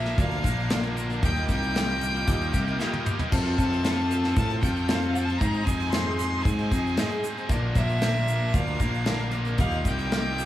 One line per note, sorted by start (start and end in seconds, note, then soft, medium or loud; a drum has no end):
0.00 0.14 A#1 loud
0.00 0.31 F3 medium
0.00 0.45 F3 medium
0.00 0.32 A#3 medium
0.00 0.44 A#3 medium
0.00 0.30 D4 medium
0.00 0.43 D4 medium
0.00 1.21 D4 medium
0.00 1.21 F4 medium
0.00 0.30 A#4 medium
0.00 0.43 A#4 medium
0.00 1.21 A#4 medium
0.00 1.21 D5 medium
0.00 0.15 E5 loud
0.05 snare soft
0.17 0.42 D2 loud
0.17 0.57 F4 medium
0.17 0.58 A#4 medium
0.17 0.58 D5 medium
0.17 0.93 F5 loud
0.17 kick loud
0.17 closed hi-hat loud
0.17 shaker medium
0.31 0.43 F3 medium
0.31 0.44 A#3 medium
0.31 0.45 D4 medium
0.31 0.44 A#4 medium
0.31 closed hi-hat soft
0.44 1.19 A#1 medium
0.44 0.70 F3 medium
0.44 0.70 A#3 medium
0.44 0.70 D4 medium
0.44 0.71 A#4 medium
0.44 kick medium
0.44 closed hi-hat medium
0.44 shaker loud
0.59 shaker soft
0.69 0.97 A#2 medium
0.69 0.97 D3 medium
0.69 0.95 F3 medium
0.69 0.96 A#3 loud
0.69 0.97 D4 medium
0.69 1.10 F4 medium
0.69 1.10 A#4 medium
0.69 0.97 A#4 medium
0.69 1.11 D5 medium
0.69 snare loud
0.69 closed hi-hat loud
0.69 shaker medium
0.83 closed hi-hat soft
0.96 1.09 F3 medium
0.96 1.10 A#3 medium
0.96 1.09 D4 medium
0.96 1.08 A#4 medium
0.96 closed hi-hat medium
0.96 shaker loud
1.09 1.22 F3 soft
1.09 1.21 A#3 soft
1.09 1.23 D4 soft
1.09 1.23 A#4 medium
1.09 closed hi-hat soft
1.09 shaker soft
1.22 1.49 D#2 medium
1.22 1.36 D#3 medium
1.22 1.36 G3 medium
1.22 1.36 A#3 medium
1.22 1.36 D#4 medium
1.22 1.63 F4 medium
1.22 3.31 F4 medium
1.22 1.34 F4 medium
1.22 1.63 G4 medium
1.22 3.31 G4 medium
1.22 1.47 G4 loud
1.22 3.30 A#4 medium
1.22 1.63 D#5 medium
1.22 3.31 D#5 medium
1.22 1.48 G5 loud
1.22 kick loud
1.22 closed hi-hat loud
1.22 shaker medium
1.35 1.75 A#3 soft
1.35 1.75 D#4 soft
1.35 1.75 F4 medium
1.35 closed hi-hat soft
1.49 2.24 C2 medium
1.49 1.74 A#3 medium
1.49 1.74 D#4 medium
1.49 1.75 G4 medium
1.49 3.02 G5 loud
1.49 kick medium
1.49 closed hi-hat medium
1.49 shaker medium
1.62 closed hi-hat soft
1.62 shaker soft
1.74 1.88 D#3 medium
1.74 1.89 G3 medium
1.74 1.89 A#3 medium
1.74 1.88 D#4 medium
1.74 2.15 F4 medium
1.74 1.87 F4 medium
1.74 2.15 G4 medium
1.74 2.52 G4 medium
1.74 2.16 D#5 medium
1.74 snare loud
1.74 closed hi-hat medium
1.74 shaker medium
1.88 2.00 A#3 soft
1.88 2.01 D#4 soft
1.88 2.01 F4 medium
2.00 2.40 G3 medium
2.00 2.41 A#3 medium
2.00 2.40 D#4 medium
2.00 2.39 F4 medium
2.00 closed hi-hat medium
2.00 shaker medium
2.15 shaker soft
2.27 2.52 D#2 loud
2.27 2.67 F4 medium
2.27 2.67 G4 medium
2.27 2.68 D#5 medium
2.27 kick loud
2.27 closed hi-hat loud
2.27 shaker medium
2.40 2.52 A#3 medium
2.40 2.53 D#4 medium
2.40 2.54 F4 medium
2.40 closed hi-hat soft
2.53 2.78 C2 medium
2.53 2.66 G3 medium
2.53 2.67 A#3 medium
2.53 2.65 D#4 medium
2.53 2.64 F4 medium
2.53 2.80 G4 medium
2.53 kick medium
2.53 closed hi-hat medium
2.53 shaker medium
2.66 2.79 A#3 soft
2.66 2.80 D#4 medium
2.66 2.79 F4 medium
2.66 shaker soft
2.79 3.06 D#3 medium
2.79 3.03 G3 medium
2.79 3.04 A#3 medium
2.79 3.05 D#4 loud
2.79 3.20 F4 loud
2.79 3.07 F4 loud
2.79 3.20 G4 medium
2.79 3.04 G4 medium
2.79 3.20 D#5 loud
2.79 snare medium
2.79 shaker medium
2.93 high tom medium
3.05 3.19 G3 medium
3.05 3.19 A#3 medium
3.05 3.18 D#4 medium
3.05 3.17 F4 medium
3.05 3.31 G4 medium
3.05 mid tom medium
3.05 shaker medium
3.18 3.32 A#3 soft
3.18 3.33 D#4 medium
3.18 3.32 F4 medium
3.18 floor tom medium
3.18 shaker soft
3.31 3.45 F2 medium
3.31 3.57 F2 medium
3.31 3.45 C3 medium
3.31 3.45 F3 medium
3.31 3.45 C4 loud
3.31 3.72 F4 medium
3.31 5.39 F4 medium
3.31 3.45 F4 loud
3.31 5.39 A4 medium
3.31 3.72 A4 medium
3.31 3.43 A4 loud
3.31 5.39 C5 medium
3.31 3.73 C5 medium
3.31 5.39 F5 medium
3.31 kick loud
3.31 crash loud
3.31 shaker medium
3.45 3.84 F3 soft
3.45 3.85 C4 soft
3.45 3.85 F4 soft
3.45 3.84 A4 soft
3.58 4.33 F2 loud
3.58 3.85 C4 medium
3.58 3.84 F4 medium
3.58 3.85 A4 medium
3.58 4.33 A5 medium
3.58 kick medium
3.58 closed hi-hat medium
3.58 shaker medium
3.73 shaker soft
3.84 4.11 F2 medium
3.84 4.11 C3 medium
3.84 4.09 F3 medium
3.84 4.10 C4 medium
3.84 4.24 F4 medium
3.84 4.11 F4 medium
3.84 4.25 A4 medium
3.84 4.12 A4 medium
3.84 4.25 C5 medium
3.84 snare loud
3.84 closed hi-hat medium
3.84 shaker medium
4.10 4.50 F3 medium
4.10 4.50 C4 medium
4.10 4.49 F4 medium
4.10 4.48 A4 medium
4.10 closed hi-hat medium
4.10 shaker medium
4.24 snare soft
4.36 4.61 A2 medium
4.36 4.77 F4 medium
4.36 4.77 A4 medium
4.36 4.78 C5 medium
4.36 4.61 A5 loud
4.36 kick loud
4.36 closed hi-hat loud
4.36 shaker medium
4.49 4.61 F3 medium
4.49 4.62 C4 medium
4.49 4.63 F4 medium
4.49 4.63 A4 medium
4.49 closed hi-hat soft
4.61 5.37 F2 loud
4.61 4.88 F3 medium
4.61 4.89 C4 medium
4.61 4.89 F4 medium
4.61 4.89 A4 medium
4.61 4.89 G5 medium
4.61 kick medium
4.61 closed hi-hat medium
4.61 shaker medium
4.76 shaker soft
4.88 5.15 F2 medium
4.88 5.15 C3 medium
4.88 5.14 F3 medium
4.88 5.14 C4 loud
4.88 5.28 F4 medium
4.88 5.16 F4 loud
4.88 5.29 A4 medium
4.88 5.16 A4 medium
4.88 5.29 C5 medium
4.88 5.15 F5 medium
4.88 snare loud
4.88 closed hi-hat loud
4.88 shaker medium
5.02 closed hi-hat soft
5.13 5.28 F3 medium
5.13 5.28 C4 medium
5.13 5.27 F4 medium
5.13 5.39 A5 loud
5.13 closed hi-hat medium
5.13 shaker loud
5.18 5.26 A4 medium
5.28 5.41 F3 soft
5.28 5.41 C4 soft
5.28 5.42 F4 medium
5.28 5.41 A4 medium
5.28 closed hi-hat soft
5.28 shaker soft
5.38 5.54 G#2 medium
5.38 5.67 G#2 loud
5.38 5.54 D#3 medium
5.38 5.55 G#3 medium
5.38 5.81 D#4 medium
5.38 7.48 D#4 medium
5.38 7.48 G#4 medium
5.38 5.81 G#4 medium
5.38 7.48 C5 medium
5.38 7.48 D#5 medium
5.38 5.67 A#5 loud
5.38 kick loud
5.38 closed hi-hat medium
5.38 shaker medium
5.42 5.55 C4 medium
5.42 5.54 D#4 medium
5.42 5.53 G#4 medium
5.42 5.81 C5 medium
5.54 5.94 G#3 soft
5.54 5.94 C4 soft
5.54 5.94 D#4 soft
5.54 5.93 G#4 medium
5.54 closed hi-hat soft
5.65 6.41 F2 loud
5.65 5.92 C4 medium
5.65 5.93 D#4 medium
5.65 5.93 G#4 medium
5.65 5.91 G#5 loud
5.65 kick medium
5.65 closed hi-hat medium
5.65 shaker medium
5.80 closed hi-hat soft
5.80 shaker soft
5.90 6.20 G#2 medium
5.90 6.33 D#4 medium
5.90 6.33 G#4 medium
5.90 6.17 C6 loud
5.90 snare loud
5.90 closed hi-hat medium
5.94 6.20 D#3 medium
5.94 6.19 G#3 medium
5.94 6.20 C4 medium
5.94 6.21 D#4 medium
5.94 6.21 G#4 medium
5.94 6.34 C5 medium
5.94 shaker medium
6.17 6.59 G#3 medium
6.17 6.45 C6 loud
6.17 closed hi-hat medium
6.17 shaker medium
6.21 6.59 C4 medium
6.21 6.58 D#4 medium
6.21 6.57 G#4 medium
6.43 6.70 G#2 loud
6.43 6.85 D#4 medium
6.43 6.86 G#4 medium
6.43 7.23 G#5 medium
6.43 kick loud
6.43 closed hi-hat loud
6.47 6.86 C5 medium
6.47 shaker medium
6.59 6.70 G#3 soft
6.59 6.71 C4 soft
6.59 6.72 D#4 medium
6.59 6.72 G#4 medium
6.59 closed hi-hat soft
6.71 6.96 F2 medium
6.71 6.97 G#3 medium
6.71 6.97 C4 medium
6.71 6.98 D#4 medium
6.71 6.98 G#4 medium
6.71 kick medium
6.71 closed hi-hat medium
6.71 shaker loud
6.87 shaker soft
6.97 7.24 G#2 medium
6.97 7.24 D#3 medium
6.97 7.22 G#3 loud
6.97 7.23 C4 medium
6.97 7.38 D#4 medium
6.97 7.24 D#4 medium
6.97 7.38 G#4 medium
6.97 7.25 G#4 medium
6.97 7.39 D#5 medium
6.97 snare loud
6.97 closed hi-hat loud
6.97 shaker medium
7.11 closed hi-hat soft
7.23 7.37 G#3 medium
7.23 7.36 C4 medium
7.23 7.36 D#4 medium
7.23 7.35 G#4 medium
7.23 closed hi-hat medium
7.23 shaker loud
7.36 7.50 G#3 soft
7.36 7.50 C4 medium
7.36 7.50 D#4 medium
7.36 7.50 G#4 medium
7.36 shaker soft
7.49 7.74 A#1 loud
7.49 7.63 A#2 medium
7.49 7.63 D3 medium
7.49 7.63 F3 medium
7.49 7.62 A#3 medium
7.49 7.62 D4 loud
7.49 9.58 D4 medium
7.49 7.90 F4 medium
7.49 9.58 F4 medium
7.49 7.90 A#4 medium
7.49 7.61 A#4 loud
7.49 9.58 A#4 medium
7.49 7.90 D5 loud
7.49 9.58 D5 medium
7.49 kick loud
7.49 closed hi-hat loud
7.49 shaker medium
7.62 8.01 F3 medium
7.62 8.02 A#3 soft
7.62 8.02 D4 soft
7.62 8.02 A#4 medium
7.75 8.50 A#1 loud
7.75 8.02 F3 medium
7.75 8.03 A#3 medium
7.75 8.03 D4 medium
7.75 8.04 A#4 medium
7.75 8.55 E5 loud
7.75 kick medium
7.75 closed hi-hat medium
7.75 shaker medium
7.89 shaker soft
8.01 8.28 A#2 medium
8.01 8.28 D3 medium
8.01 8.26 F3 medium
8.01 8.27 A#3 medium
8.01 8.28 D4 medium
8.01 8.42 F4 medium
8.01 8.42 A#4 medium
8.01 8.29 A#4 medium
8.01 8.42 C5 medium
8.01 snare loud
8.01 closed hi-hat medium
8.01 shaker medium
8.27 8.67 F3 medium
8.27 8.68 A#3 medium
8.27 8.67 D4 medium
8.27 8.66 A#4 medium
8.27 closed hi-hat medium
8.27 shaker loud
8.54 8.79 D2 loud
8.54 8.95 F4 medium
8.54 8.95 A#4 medium
8.54 8.95 D5 medium
8.54 9.33 F5 loud
8.54 kick loud
8.54 closed hi-hat loud
8.54 shaker medium
8.67 8.79 F3 soft
8.67 8.79 A#3 medium
8.67 8.81 D4 medium
8.67 8.80 A#4 medium
8.67 closed hi-hat soft
8.80 9.55 A#1 medium
8.80 9.06 F3 medium
8.80 9.06 A#3 medium
8.80 9.06 D4 medium
8.80 9.07 A#4 medium
8.80 kick medium
8.80 closed hi-hat medium
8.80 shaker medium
8.94 shaker soft
9.06 9.33 A#2 medium
9.06 9.33 D3 medium
9.06 9.30 F3 medium
9.06 9.31 A#3 medium
9.06 9.33 D4 medium
9.06 9.46 F4 medium
9.06 9.47 A#4 medium
9.06 9.33 A#4 loud
9.06 9.47 F5 medium
9.06 snare loud
9.06 closed hi-hat loud
9.06 shaker medium
9.19 closed hi-hat soft
9.31 9.46 F3 medium
9.31 9.46 A#3 medium
9.31 9.45 D4 medium
9.31 9.45 A#4 medium
9.31 closed hi-hat medium
9.45 9.59 F3 soft
9.45 9.59 A#3 soft
9.45 9.60 D4 soft
9.45 9.59 A#4 medium
9.45 closed hi-hat soft
9.45 shaker soft
9.58 9.85 D#2 loud
9.58 9.72 D#3 medium
9.58 9.73 G3 medium
9.58 9.73 A#3 medium
9.58 9.73 D#4 medium
9.58 10.45 F4 medium
9.58 10.00 F4 medium
9.58 9.71 F4 medium
9.58 10.45 G4 medium
9.58 10.00 G4 medium
9.58 9.84 G4 loud
9.58 10.45 A#4 medium
9.58 10.45 D#5 medium
9.58 10.00 D#5 medium
9.58 9.84 F5 loud
9.58 kick loud
9.58 closed hi-hat medium
9.58 shaker medium
9.71 10.11 A#3 soft
9.71 10.12 D#4 medium
9.71 10.12 F4 soft
9.71 closed hi-hat soft
9.85 10.45 C2 medium
9.85 10.12 A#3 medium
9.85 10.12 D#4 medium
9.85 10.13 G4 medium
9.85 10.45 G5 loud
9.85 kick medium
9.85 closed hi-hat medium
9.85 shaker medium
9.98 closed hi-hat soft
10.11 10.38 D#3 medium
10.11 10.36 G3 medium
10.11 10.37 A#3 medium
10.11 10.38 D#4 medium
10.11 10.45 F4 medium
10.11 10.39 F4 medium
10.11 10.45 G4 medium
10.11 10.45 D#5 medium
10.11 snare loud
10.11 closed hi-hat medium
10.11 shaker medium
10.37 10.45 G3 medium
10.37 10.45 A#3 medium
10.37 10.45 D#4 medium
10.37 10.45 F4 medium
10.37 closed hi-hat medium
10.37 shaker medium